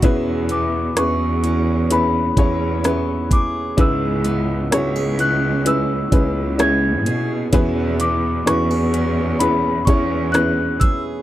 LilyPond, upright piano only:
<<
  \new Staff \with { instrumentName = "Upright piano" } { \time 4/4 \key e \mixolydian \tempo 4 = 64 <cis' e' gis' b'>4 <cis' e' gis' b'>4 <cis' e' gis' b'>8 <cis' e' gis' cis''>8 <cis' e' gis' b'>4 | <cis' e' gis' b'>4 <cis' e' gis' cis''>4 <cis' e' gis' b'>8 <cis' e' gis' b'>8 <cis' e' gis' cis''>4 | <cis' e' gis' b'>4 <cis' e' gis' b'>4 <cis' e' gis' b'>8 <cis' e' gis' cis''>8 <cis' e' gis' b'>4 | }
  \new Staff \with { instrumentName = "Upright piano" } { \clef bass \time 4/4 \key e \mixolydian b,4. r2 r8 | gis,4. r2 r8 | b,4. r2 r8 | }
>>